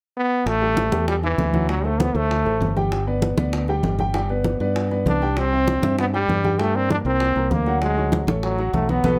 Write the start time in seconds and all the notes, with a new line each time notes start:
0.17 B3
0.46 A1 A3, high bongo, high conga
0.62 G3 G4 A4, high conga
0.77 high bongo, high conga
0.92 E2 G3 G4 A4, high bongo, high conga
1.08 G3, high bongo, high conga
1.23 E3 E4 E5, high bongo, high conga
1.38 D2, high bongo, low bongo, high conga
1.54 F#3 F#4 F#5, high bongo, high conga
1.69 F#3 F#4 F#5, high bongo
1.85 A3 A4 C5, high conga
2.00 B3, high bongo, high conga
2.15 D2 A3 A4 C5, high bongo, high conga
2.31 high bongo, high conga
2.45 A1 A3 A4 C5, high bongo, high conga
2.60 G1, high bongo, low bongo, high conga
2.76 G3 G4 G5, high bongo, high conga
2.92 high bongo, high conga
3.07 B3 B4 D5, high conga
3.22 high bongo, high conga
3.37 D2 B3 B4 D5, high bongo, high conga
3.53 high bongo, high conga
3.68 G3 G4 G5, high bongo, high conga
3.83 G1, high bongo, low bongo, high conga
3.99 G3 G4 G5, high bongo, high conga
4.14 G3 G4 G5, high bongo, high conga
4.29 B3 B4 D5, high conga
4.44 high bongo, high conga
4.60 G2 B3 B4 D5, high bongo, high conga
4.76 high bongo, high conga
4.91 B3 B4 D5, high bongo, high conga
5.06 C2 D4, high bongo, low bongo, high conga
5.22 G3 G4 G5, high bongo
5.37 C4, high bongo, high conga
5.53 C4 C5 E5, high conga
5.68 high bongo, high conga
5.82 G2 C4 C5 E5, high bongo, high conga
5.99 B3, high bongo, high conga
6.13 G3 G4 G5, high bongo, high conga
6.28 G2, high bongo, low bongo, high conga
6.44 G3 G4 G5, high bongo, high conga
6.59 G3 A3 G4 G5, high bongo, high conga
6.75 A#3 C4 A#4 D5, high conga
6.90 D4, high bongo, high conga
7.05 C2 A#3 C4 A#4 C5, high bongo, high conga
7.20 high bongo, high conga
7.36 C2 A#3 A#4 C5, high bongo, high conga
7.51 D2 A#3, high bongo, low bongo, high conga
7.66 F#3 F#4 F#5, high bongo
7.82 G#3, high bongo, high conga
7.97 F#3 F#4 C#5, high conga
8.12 high bongo, high conga
8.27 A1 A3 A4 C#5, high bongo, high conga
8.43 F#3, high bongo, high conga
8.58 F#3 F#4 F#5, high bongo, high conga
8.73 B1 A3, high bongo, low bongo, high conga
8.89 F#3 B3 F#4 F#5, high bongo, high conga
9.04 B1 F#4 A4 B4, low bongo, high conga